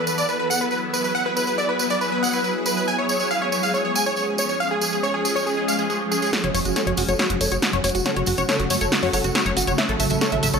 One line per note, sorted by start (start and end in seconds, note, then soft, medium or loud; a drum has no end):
0.00 2.84 F#3 medium
0.00 2.84 B3 medium
0.00 2.84 E4 medium
0.00 6.29 G#4 medium
0.07 0.15 B4 medium
0.07 tambourine medium
0.18 0.26 D5 medium
0.18 tambourine medium
0.29 0.37 B4 medium
0.29 tambourine soft
0.39 0.48 B4 medium
0.50 0.59 F#5 medium
0.50 tambourine medium
0.61 0.69 B4 medium
0.61 tambourine soft
0.71 0.80 B4 medium
0.71 tambourine soft
0.93 1.02 B4 medium
0.93 tambourine medium
1.04 1.13 B4 medium
1.04 tambourine soft
1.15 1.23 F#5 medium
1.15 tambourine soft
1.26 1.34 B4 medium
1.37 1.45 B4 medium
1.37 tambourine medium
1.47 1.56 B4 medium
1.47 tambourine soft
1.58 1.67 D5 medium
1.58 tambourine soft
1.69 1.77 B4 medium
1.79 1.88 B4 medium
1.79 tambourine medium
1.90 1.99 D5 medium
1.90 tambourine soft
2.01 2.10 B4 medium
2.01 tambourine soft
2.12 2.21 B4 medium
2.23 2.31 F#5 medium
2.23 tambourine medium
2.33 2.42 B4 medium
2.33 tambourine soft
2.44 2.53 B4 medium
2.44 tambourine soft
2.66 2.75 B4 medium
2.66 tambourine medium
2.77 2.85 B4 medium
2.77 tambourine soft
2.88 6.29 F3 medium
2.88 6.29 G#3 medium
2.88 6.29 C#4 medium
2.88 2.96 G#5 loud
2.88 tambourine soft
2.98 3.07 C#5 medium
3.09 3.18 C#5 medium
3.09 tambourine medium
3.20 3.29 C#5 medium
3.20 tambourine soft
3.31 3.39 F5 medium
3.31 tambourine soft
3.42 3.50 C#5 medium
3.52 3.61 C#5 medium
3.52 tambourine medium
3.63 3.72 F5 medium
3.63 tambourine soft
3.74 3.82 C#5 medium
3.74 tambourine soft
3.85 3.93 C#5 medium
3.95 4.04 G#5 medium
3.95 tambourine medium
4.06 4.15 C#5 medium
4.06 tambourine soft
4.16 4.26 C#5 medium
4.16 tambourine soft
4.38 4.47 C#5 medium
4.38 tambourine medium
4.49 4.58 C#5 medium
4.49 tambourine soft
4.60 4.69 F5 loud
4.60 tambourine soft
4.71 4.79 G#4 medium
4.81 4.90 G#4 medium
4.81 tambourine medium
4.93 5.01 G#4 medium
4.93 tambourine soft
5.03 5.12 C#5 medium
5.03 tambourine soft
5.14 5.23 G#4 medium
5.25 5.33 G#4 medium
5.25 tambourine medium
5.36 5.44 C#5 medium
5.36 tambourine soft
5.46 5.55 G#4 medium
5.46 tambourine soft
5.57 5.66 G#4 medium
5.68 5.77 F5 medium
5.68 tambourine medium
5.79 5.87 G#4 medium
5.79 tambourine soft
5.90 5.98 G#4 medium
5.90 tambourine soft
6.11 6.20 G#4 medium
6.11 tambourine medium
6.22 6.31 G#4 medium
6.22 tambourine soft
6.33 10.60 C#3 medium
6.33 9.75 F#3 medium
6.33 10.60 A3 medium
6.33 9.75 F#4 medium
6.33 6.38 F#4 medium
6.33 6.41 C#5 loud
6.33 snare soft
6.33 closed hi-hat medium
6.33 tambourine soft
6.44 6.51 F#1 medium
6.44 6.52 F#4 medium
6.44 6.49 C#5 medium
6.44 closed hi-hat soft
6.54 6.61 F#1 medium
6.54 6.63 F#4 medium
6.54 6.59 C#5 loud
6.54 open hi-hat loud
6.54 tambourine medium
6.65 6.72 F#1 medium
6.65 6.74 F#4 medium
6.65 6.70 F#4 medium
6.65 closed hi-hat medium
6.65 tambourine medium
6.76 6.85 F#4 medium
6.76 6.85 A4 medium
6.76 6.81 C#5 loud
6.76 snare soft
6.76 closed hi-hat medium
6.76 tambourine soft
6.87 6.94 F#1 medium
6.87 6.95 F#4 medium
6.87 6.92 C#5 medium
6.87 closed hi-hat soft
6.97 7.05 F#1 medium
6.97 7.03 F#4 medium
6.97 7.06 F#4 medium
6.97 open hi-hat loud
6.97 tambourine medium
7.08 7.15 F#1 medium
7.08 7.17 F#4 medium
7.08 7.17 A4 medium
7.08 7.13 C#5 loud
7.08 closed hi-hat soft
7.08 tambourine soft
7.19 7.28 F#4 medium
7.19 7.24 C#5 medium
7.19 snare soft
7.19 closed hi-hat soft
7.19 tambourine soft
7.30 7.37 F#1 medium
7.30 7.35 F#4 medium
7.30 7.39 F#4 medium
7.30 closed hi-hat medium
7.41 7.48 F#1 medium
7.41 7.49 A4 medium
7.41 7.46 C#5 loud
7.41 7.49 C#5 medium
7.41 open hi-hat loud
7.41 tambourine medium
7.51 7.59 F#1 medium
7.51 7.60 F#4 medium
7.51 7.57 C#5 loud
7.51 closed hi-hat medium
7.51 tambourine soft
7.62 7.67 F#4 medium
7.62 7.71 F#4 medium
7.62 snare soft
7.62 closed hi-hat medium
7.62 tambourine soft
7.73 7.80 F#1 medium
7.73 7.78 C#5 medium
7.73 closed hi-hat soft
7.84 7.91 F#1 loud
7.84 7.92 F#4 medium
7.84 7.89 C#5 loud
7.84 open hi-hat loud
7.84 tambourine medium
7.89 closed hi-hat medium
7.95 8.02 F#1 medium
7.95 8.03 F#4 medium
7.95 8.00 F#4 medium
7.95 closed hi-hat medium
7.95 tambourine soft
8.05 8.14 A4 medium
8.05 8.11 C#5 medium
8.05 8.14 F#5 loud
8.05 snare soft
8.05 closed hi-hat medium
8.05 tambourine soft
8.16 8.23 F#1 medium
8.16 8.25 F#4 medium
8.16 8.21 C#5 loud
8.16 closed hi-hat soft
8.26 8.34 F#1 loud
8.26 8.32 F#4 medium
8.26 8.36 F#4 medium
8.26 open hi-hat loud
8.26 tambourine medium
8.37 8.45 F#1 medium
8.37 8.47 F#4 medium
8.37 8.43 C#5 loud
8.37 closed hi-hat medium
8.37 tambourine soft
8.49 8.57 A4 medium
8.49 8.54 C#5 loud
8.49 8.57 C#5 medium
8.49 snare medium
8.49 closed hi-hat medium
8.49 tambourine soft
8.59 8.66 F#1 medium
8.59 8.64 F#4 medium
8.59 8.68 F#4 medium
8.59 closed hi-hat medium
8.70 8.77 F#1 loud
8.70 8.79 F#4 medium
8.70 8.75 C#5 loud
8.70 open hi-hat loud
8.70 tambourine medium
8.81 8.88 F#1 medium
8.81 8.90 A4 medium
8.81 8.86 C#5 loud
8.81 8.90 C#5 medium
8.81 closed hi-hat soft
8.81 tambourine medium
8.92 8.97 F#4 medium
8.92 9.01 F#4 medium
8.92 snare medium
8.92 closed hi-hat medium
8.92 tambourine soft
9.03 9.10 F#1 medium
9.03 9.11 F#4 medium
9.03 9.08 C#5 loud
9.03 open hi-hat medium
9.13 9.20 F#1 loud
9.13 9.22 A4 medium
9.13 9.18 C#5 loud
9.13 9.22 F#5 medium
9.13 open hi-hat loud
9.13 tambourine medium
9.24 9.31 F#1 medium
9.24 9.29 F#4 medium
9.24 9.33 F#4 medium
9.24 closed hi-hat soft
9.24 tambourine soft
9.35 9.44 F#4 medium
9.35 9.40 C#5 loud
9.35 snare medium
9.35 closed hi-hat medium
9.35 tambourine soft
9.46 9.53 F#1 medium
9.46 9.51 C#5 medium
9.46 closed hi-hat soft
9.57 9.64 F#1 medium
9.57 9.62 F#4 medium
9.57 9.65 F#4 medium
9.57 open hi-hat loud
9.57 tambourine medium
9.62 closed hi-hat medium
9.67 9.74 F#1 medium
9.67 9.76 F#4 medium
9.67 9.72 C#5 loud
9.67 closed hi-hat medium
9.67 tambourine medium
9.78 10.60 B3 medium
9.78 10.60 E4 medium
9.78 9.87 C#5 medium
9.78 9.83 E5 loud
9.78 9.87 E5 loud
9.78 snare medium
9.78 closed hi-hat medium
9.78 tambourine soft
9.89 9.96 A1 medium
9.89 9.94 A4 medium
9.89 9.98 A4 medium
9.89 closed hi-hat soft
10.00 10.07 A1 loud
10.00 10.08 A4 medium
10.00 10.05 E5 loud
10.00 open hi-hat loud
10.00 tambourine loud
10.10 10.18 A1 medium
10.10 10.19 A4 medium
10.10 10.16 E5 loud
10.10 closed hi-hat soft
10.10 tambourine medium
10.21 10.26 A4 medium
10.21 10.30 A4 medium
10.21 10.30 C#5 medium
10.21 snare medium
10.21 closed hi-hat medium
10.21 tambourine soft
10.32 10.39 A1 medium
10.32 10.41 A4 medium
10.32 10.37 E5 medium
10.32 closed hi-hat soft
10.43 10.50 A1 loud
10.43 10.52 A4 medium
10.43 10.48 E5 loud
10.43 open hi-hat loud
10.43 tambourine medium
10.53 10.60 A1 medium
10.53 10.59 A4 medium
10.53 10.60 A4 medium
10.53 10.60 C#5 medium
10.53 closed hi-hat soft
10.53 tambourine soft